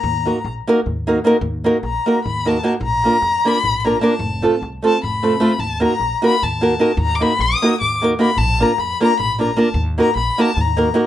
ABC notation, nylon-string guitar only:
X:1
M:7/8
L:1/8
Q:1/4=151
K:none
V:1 name="Nylon-string guitar"
z [_B,_E_G_B] z [B,EGB] z [B,EGB] [B,EGB] | z [_B,_E_G_B] z [B,EGB] z [B,EGB] [B,EGB] | z [_B,DF_B] z [B,DFB] z [B,DFB] [B,DFB] | z [A,CFA] z [A,CFA] z [A,CFA] [A,CFA] |
z [_B,_E_G_B] z [B,EGB] z [B,EGB] [B,EGB] | z [_B,_E_G_B] z [B,EGB] z [B,EGB] [B,EGB] | z [_B,DF_B] z [B,DFB] z [B,DFB] [B,DFB] | z [_B,_E_G_B] z [B,EGB] z [B,EGB] [B,EGB] |]